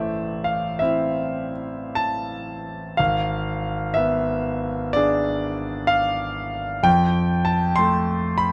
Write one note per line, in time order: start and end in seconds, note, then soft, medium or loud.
0.00 2.93 A1 soft
0.00 1.52 A3 soft
0.00 3.01 C5 medium
0.00 3.01 D5 medium
0.00 0.45 E5 medium
0.44 0.81 F5 medium
0.79 2.95 C4 soft
0.79 2.95 E4 soft
0.79 1.97 E5 medium
1.95 2.98 A5 medium
2.97 6.82 G#1 medium
2.97 3.95 F5 medium
3.94 5.52 B3 soft
3.94 4.94 E5 medium
4.93 6.83 D4 soft
4.93 6.83 G#4 medium
4.93 5.90 D5 medium
5.87 6.85 F5 medium
6.83 8.52 F2 medium
6.83 7.46 G5 loud
7.45 7.77 A5 medium
7.76 8.52 A3 soft
7.76 8.40 C6 loud
8.38 8.52 B5 medium